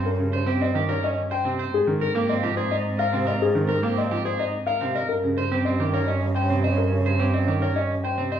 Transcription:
<<
  \new Staff \with { instrumentName = "Grand piano" } { \time 3/4 \key aes \major \tempo 4 = 107 bes'16 r16 c''16 r16 ees''16 r16 des''16 ees''16 r16 g''16 r8 | aes'16 r16 bes'16 r16 ees''16 r16 c''16 ees''16 r16 f''16 r16 ees''16 | aes'16 r16 bes'16 r16 ees''16 r16 c''16 ees''16 r16 f''16 r16 ees''16 | bes'16 r16 c''16 r16 ees''16 r16 des''16 ees''16 r16 g''16 r16 ees''16 |
bes'16 r16 c''16 r16 ees''16 r16 des''16 ees''16 r16 g''16 r16 ees''16 | }
  \new Staff \with { instrumentName = "Clean electric guitar" } { \time 3/4 \key aes \major r8 c''16 g'16 c'16 g'16 bes'16 des'16 r16 c''16 c'16 c''16 | r8 bes'16 g'16 c'16 g'16 aes'16 ees'16 r16 bes'16 c'16 bes'16 | r8 bes'16 g'16 c'16 g'16 aes'16 ees'16 r16 bes'16 c'16 bes'16 | r8 c''16 g'16 c'16 g'16 bes'16 des'16 r16 c''16 c'16 c''16 |
r8 c''16 g'16 c'16 g'16 bes'16 des'16 r16 c''16 c'16 c''16 | }
  \new Staff \with { instrumentName = "Alto flute" } { \time 3/4 \key aes \major des'2~ des'8. r16 | c'2.~ | c'2~ c'8. r16 | des'2.~ |
des'2~ des'8. r16 | }
  \new Staff \with { instrumentName = "Grand piano" } { \clef bass \time 3/4 \key aes \major r16 des16 r16 c'16 r16 ees16 r4 c16 r16 | r16 ees16 r16 bes16 r16 f16 r4 c16 r16 | r16 ees16 r16 bes16 r16 f16 r4 c16 r16 | r16 des16 r16 c'16 r16 ees16 r4 c16 r16 |
r16 des16 r16 c'16 r16 ees16 r4 c16 r16 | }
  \new Staff \with { instrumentName = "Cello" } { \clef bass \time 3/4 \key aes \major g,2. | aes,2.~ | aes,2. | g,2.~ |
g,2. | }
>>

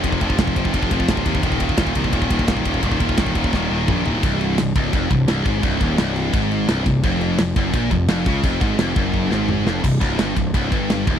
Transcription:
<<
  \new Staff \with { instrumentName = "Distorted electric guitar" } { \clef bass \time 4/4 \key ees \major \tempo 4 = 171 <f, c f>8 <f, c f>8 <f, c f>8 <f, c f>8 <f, c f>8 <f, c f>8 <f, c f>8 <f, c f>8 | <ees, bes, ees>8 <ees, bes, ees>8 <ees, bes, ees>8 <ees, bes, ees>8 <ees, bes, ees>8 <ees, bes, ees>8 <ees, bes, ees>8 <ees, bes, ees>8 | <ees, bes, ees>8 <ees, bes, ees>8 <ees, bes, ees>8 <ees, bes, ees>8 <ees, bes, ees>8 <ees, bes, ees>8 <ees, bes, ees>8 <ees, bes, ees>8 | \key c \minor c,4 c,8 des,8 f,8 c,8 c,8 aes,8 |
c,8 ees,8 c,4 aes,4 c,8 c,8 | f,4 f,8 fis,8 bes,8 f,8 f,8 des8 | f,8 aes,8 f,8 fis,4 aes,4 f,8 | c,8 c,8 g,8 c,8 c,8 g,4 ees,8 | }
  \new Staff \with { instrumentName = "Picked electric bass" } { \clef bass \time 4/4 \key ees \major f,,8 f,,8 f,,8 f,,8 f,,8 f,,8 c,,8 ees,8 | ees,,4 ees,,8 c,8 ees,,8 ees,,8 ees,,8 ees,,8 | ees,,8 ees,,8 ees,,8 ees,,8 ees,,8 ees,,8 bes,,8 d,,8 | \key c \minor c,,4 c,,8 des,,8 f,,8 c,,8 c,,8 aes,,8 |
c,,8 ees,,8 c,,4 aes,,4 c,,8 c,,8 | f,,4 f,,8 fis,,8 bes,,8 f,,8 f,,8 des,8 | f,,8 aes,,8 f,,8 fis,,4 aes,,4 f,,8 | c,,8 c,,8 g,,8 c,,8 c,,8 g,,4 ees,,8 | }
  \new DrumStaff \with { instrumentName = "Drums" } \drummode { \time 4/4 <bd cymr>16 bd16 <bd cymr>16 bd16 <bd cymr sn>16 bd16 <bd cymr>16 bd16 <bd cymr>16 bd16 <bd cymr>16 bd16 <bd cymr sn>16 bd16 <bd cymr>16 bd16 | <bd cymr>16 bd16 <bd cymr>16 bd16 <bd cymr sn>16 bd16 <bd cymr>16 bd16 <bd cymr>16 bd16 <bd cymr>16 bd16 <bd cymr sn>16 bd16 <bd cymr>16 bd16 | <bd cymr>16 bd16 <bd cymr>16 bd16 <bd cymr sn>16 bd16 <bd cymr>16 bd16 <bd sn>4 <bd toml>8 tomfh8 | <cymc bd>8 cymc8 <cymc sn>8 <cymc bd>8 <cymc bd>8 <cymc bd>8 <cymc sn>8 <cymc bd>8 |
<cymc bd>8 <cymc bd>8 <cymc sn>8 cymc8 <cymc bd>8 cymc8 <cymc sn>8 <cymc bd>8 | <cymc bd>8 cymc8 <cymc sn>8 <cymc bd>8 <cymc bd>8 <cymc bd>8 <cymc sn>8 <cymc bd>8 | <cymc bd>8 <cymc bd>8 <cymc sn>8 <cymc bd>8 bd8 sn8 toml8 sn8 | <cymc bd>8 <cymc bd>8 <cymc sn>8 <cymc bd>8 <cymc bd>8 <cymc bd>8 <cymc sn>8 <cymc bd>8 | }
>>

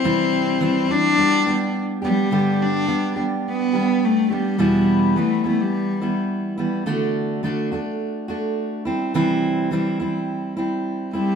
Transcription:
<<
  \new Staff \with { instrumentName = "Steel-string acoustic guitar" } { \time 4/4 \key g \major \tempo 4 = 106 <c e g c' e'>4 <e g c' e'>8 <g c' e'>8 <g b d' g'>8 <g b d' g'>4 <g b d' g'>8 | <g, d g b d' g'>4 <g b d' g'>8 <g b d' g'>4 <g b d' g'>4 <g b d' g'>8 | <e, b, e g b e'>4 <e g b e'>8 <e g b e'>4 <e g b e'>4 <e g b e'>8 | <d a d' fis'>4 <d a d' fis'>8 <a d' fis'>4 <a d' fis'>4 <g c' e'>8 |
<c e g c' e'>4 <e g c' e'>8 <g c' e'>4 <g c' e'>4 <g c' e'>8 | }
  \new Staff \with { instrumentName = "Cello" } { \time 4/4 \key g \major c'4. d'4. r8 g8~ | g8 d'4 r8 b4 a8 g8~ | g4 a8 a16 g4 r4 r16 | r1 |
r2. r8 g8 | }
>>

